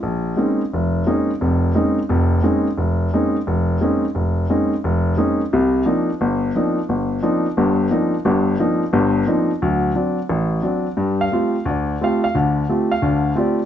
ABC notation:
X:1
M:4/4
L:1/8
Q:"Swing" 1/4=176
K:Cphr
V:1 name="Grand piano"
z8 | z8 | z8 | z8 |
z8 | z8 | z8 | z8 |
[K:Cmix] z f3 d2 f f | z3 f3 d2 |]
V:2 name="Grand piano"
B,,,2 [A,B,CDE] z F,,,2 [A,B,CDE] z | [F,,,F,,]2 [A,B,CDE] z [F,,,F,,]2 [A,B,CDE] z | F,,,2 [A,B,CDE] z F,,,2 [A,B,CDE] z | F,,,2 [A,B,CDE] z F,,,2 [A,B,CDE] z |
[C,,C,]2 [F,B,C=DE] z G,,,2 [F,B,CDE] z | G,,,2 [F,B,C=DE] z [G,,,G,,]2 [F,B,CDE] z | [G,,,G,,]2 [F,B,C=DE] z [G,,,G,,]2 [F,B,CDE] z | [=D,,^F,]2 [F,C=D] z =A,,,2 [F,CD] z |
[K:Cmix] [G,,G,]2 [A,CFG] z D,,2 [A,CFG] z | [D,,D,]2 [A,CFG] z [D,,D,]2 [A,CFG] z |]